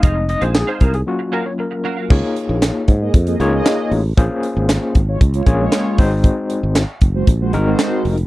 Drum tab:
CC |----------------|x---------------|----------------|----------------|
HH |x-xx--xx--------|--x-x-x-xxx-x-o-|x-x-x-x-xxx-x-o-|x-x-x-x-x-x-x-ox|
CP |----x-----------|----x-------x---|----x-------x---|----x-------x---|
SD |----o-----------|----o-------o---|----o-------o---|----o-------o---|
BD |o-----o---------|o-----o-o-------|o-----o-o-o---o-|o-----o-o-------|